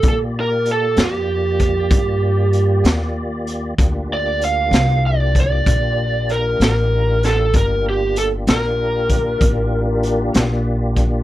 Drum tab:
HH |x-xx-xx-xx-x|x-xx-xx-xx-x|x-xx-xx-xx-x|
SD |---o-----o--|---o-----o-o|---o-----o--|
BD |o----oo-----|o----oo-----|o----oo----o|